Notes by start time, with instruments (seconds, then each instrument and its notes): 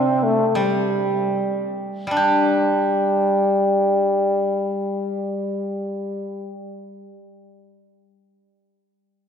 Already playing: guzheng C3, trombone C4
0.23 trombone A3
0.49 trombone A3
0.55 guzheng G3, trombone G3
2.07 guzheng G3
2.11 guzheng D4
2.17 trombone G3, guzheng G4